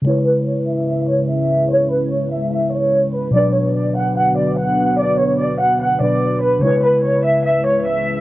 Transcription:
<<
  \new Staff \with { instrumentName = "Violin section" } { \time 4/4 \key cis \phrygian \tempo 4 = 146 cis''8 b'8 cis''8 e''8 e''8 cis''8 e''4 | cis''8 b'8 cis''8 e''8 e''8 cis''4 b'8 | d''8 cis''8 d''8 fis''8 fis''8 d''8 fis''4 | d''8 cis''8 d''8 fis''8 fis''8 d''4 b'8 |
cis''8 b'8 cis''8 e''8 e''8 cis''8 e''4 | }
  \new Staff \with { instrumentName = "Synth keys" } { \time 4/4 \key cis \phrygian <cis gis e' b'>1~ | <cis gis e' b'>1 | <b, fis d' b'>1~ | <b, fis d' b'>2~ <b, fis d' b'>8 <b, fis d' b'>4. |
<cis gis e' b'>1 | }
  \new Staff \with { instrumentName = "Analog synth pad" } { \time 4/4 \key cis \phrygian << { b'1~ | b'1~ | b'1~ | b'1~ |
b'1 | } \\ { <cis gis e'>1~ | <cis gis e'>1 | <d b fis'>1~ | <d b fis'>1 |
<cis gis e'>1 | } >> }
>>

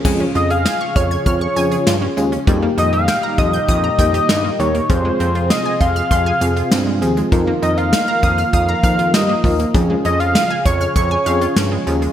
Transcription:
<<
  \new Staff \with { instrumentName = "Analog synth lead" } { \time 4/4 \key des \lydian \tempo 4 = 99 r8 ees''16 f''8. des''8 des''4. r8 | r8 ees''16 f''8. ees''8 ees''4. des''8 | c''4 ees''8 f''2 r8 | r8 ees''16 f''4~ f''16 f''4 ees''8. r16 |
r8 ees''16 f''8. des''8 des''4. r8 | }
  \new Staff \with { instrumentName = "FM electric piano" } { \time 4/4 \key des \lydian <des' f' aes'>4 r4. <des' f' aes'>8 r8 <des' f' aes'>16 r16 | <bes ees' g'>4 r4. <bes ees' g'>8 r8 <bes ees' g'>16 r16 | <c' f' aes'>4 r4. <c' f' aes'>8 r8 <c' f' aes'>16 r16 | <ees' f' bes'>4 r4. <ees' f' bes'>8 r8 <ees' f' bes'>16 r16 |
<des' f' aes'>4 r4. <des' f' aes'>8 r8 <des' f' aes'>16 r16 | }
  \new Staff \with { instrumentName = "Synth arpeggio sound" } { \time 4/4 \key des \lydian aes16 des'16 f'16 aes'16 aes''16 des'''16 f'''16 aes'''16 f'''16 des'''16 aes''16 aes'16 f'16 des'16 aes16 des'16 | g16 bes16 ees'16 g'16 g''16 bes''16 ees'''16 g'''16 ees'''16 bes''16 g''16 g'16 ees'16 bes16 g16 bes16 | f16 aes16 c'16 f'16 f''16 aes''16 c'''16 f'''16 c'''16 aes''16 f''16 f'16 c'16 aes16 f16 aes16 | f16 bes16 ees'16 f'16 f''16 bes''16 ees'''16 f'''16 ees'''16 bes''16 f''16 f'16 ees'16 bes16 f16 bes16 |
f16 aes16 des'16 f'16 f''16 aes''16 des'''16 f'''16 des'''16 aes''16 f''16 f'16 des'16 aes16 f16 aes16 | }
  \new Staff \with { instrumentName = "Analog synth pad" } { \time 4/4 \key des \lydian << { <des aes'>1 | <bes, g g'>1 | <c c' aes'>1 | <ees bes bes'>1 |
<des aes'>1 | } \\ { <f f'>1 | <ees ees'>1 | <f f'>1~ | <f f'>1~ |
<f f'>1 | } >> }
  \new Staff \with { instrumentName = "Analog synth bass" } { \clef bass \time 4/4 \key des \lydian f,8 f,8. r16 f,8 f,8 f,8 g,8 ees,8 | f,8 f,8. r16 f,8 f,8 f,8 g,8 ees,8 | f,8 f,8. r16 f,8 f,8 f,8 g,8 ees,8 | f,8 f,8. r16 f,8 f,8 f,8 g,8 ees,8 |
f,8 f,8. r16 f,8 f,8 f,8 g,8 ees,8 | }
  \new DrumStaff \with { instrumentName = "Drums" } \drummode { \time 4/4 <cymc bd>8 hh16 hh16 <hh sn>8 <hh bd>16 hh16 <hh bd>8 hh16 hh16 <hh sn>8 hh16 hh16 | <hh bd>8 hh16 hh16 <hh sn>8 <hh bd>16 hh16 <hh bd>8 <hh bd>16 hh16 <hh sn>8 hh16 hh16 | <hh bd>8 hh16 hh16 <hh sn>8 <hh bd>16 hh16 <hh bd>8 hh16 hh16 <hh sn>8 hh16 hh16 | <hh bd>8 hh16 hh16 <hh sn>8 <hh bd>16 hh16 <hh bd>8 <hh bd>16 hh16 <hh sn>8 <hho bd>16 hh16 |
<hh bd>8 hh16 hh16 <hh sn>8 <hh bd>16 hh16 <hh bd>8 hh16 hh16 <hh sn>8 hh16 hh16 | }
>>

